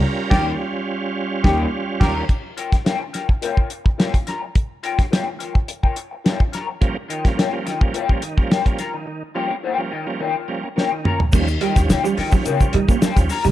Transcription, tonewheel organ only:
\new Staff \with { instrumentName = "Tonewheel organ" } { \clef bass \time 4/4 \key ees \mixolydian \tempo 4 = 106 << { bes'4 r2. | r1 | r1 | <f g bes des'>16 r8 <f g bes des'>16 r16 <f g bes des'>16 r16 <f g bes des'>16 r16 <f g bes des'>16 r16 <f g bes des'>16 r16 <f g bes des'>16 r8 |
r8 <f g bes des'>16 <bes des'>16 r16 <f g bes des'>16 r16 <f g bes des'>16 r8 <f g bes des'>16 <bes des'>16 <bes des'>16 r16 <bes des'>16 r16 | <f g des'>16 r8 <f g des'>16 r16 <f g des'>16 r16 <f g des'>16 r16 <f g des'>16 r16 <f g des'>16 r16 <f g des'>16 r8 | } \\ { <g des' f'>1 | r1 | r1 | r8 ees16 r8. ees16 r8. ees16 r4 ees16 |
ees16 r4 r16 ees16 r16 ees16 r4 ees16 r8 | r8 ees16 r8. ees16 r8. ees16 r4 ees16 | } >> }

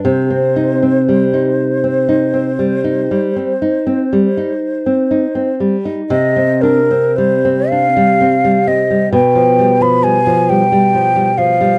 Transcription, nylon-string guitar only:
\new Staff \with { instrumentName = "Nylon-string guitar" } { \time 12/8 \key c \minor \tempo 4. = 40 c16 c'16 ees'16 c'16 g16 ees'8 c'16 ees'16 c'16 g16 ees'16 g16 c'16 ees'16 c'16 g16 ees'8 c'16 ees'16 c'16 g16 ees'16 | c16 c'16 d'16 c'16 g16 c'16 d'16 g16 c'16 g16 c'16 g16 b,16 f16 g16 f16 g16 f16 g16 g16 f16 g16 f16 g16 | }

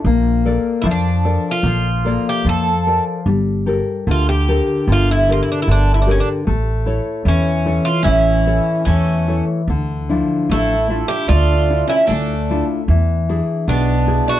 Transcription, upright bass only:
\new Staff \with { instrumentName = "Upright bass" } { \clef bass \time 2/4 \key d \minor \tempo 4 = 75 bes,,4 f,4 | bes,,4 f,4 | g,,4 d,4 | g,,4 g,,4 |
a,,4 e,4 | a,,4 e,4 | d,4 a,,4 | d,4 d,4 |
e,4 b,,4 | }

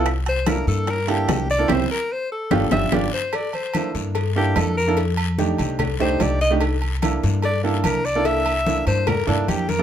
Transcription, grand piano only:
\new Staff \with { instrumentName = "Grand piano" } { \time 4/4 \key c \mixolydian \tempo 4 = 146 r4 <bes d' e' a'>4 r8 <bes d' e' a'>4 r16 <bes d' e' a'>16 | <c' e' g'>8 r4. <d' f' g'>8 <d' f' g'>8 <d' f' g'>8 r8 | r4 <bes d' e' a'>4 r8 <bes d' e' a'>4 r16 <bes d' e' a'>16 | r4 <a d' ees' g'>4 r8 <a d' ees' g'>4 r16 <a d' ees' g'>16 |
r4 <bes d' e' a'>4 r8 <bes d' e' a'>4 r16 <bes d' e' a'>16~ | <bes d' e' a'>8 r8 <bes d' e' a'>4 r8 <bes d' e' a'>4 r16 <bes d' e' a'>16 | }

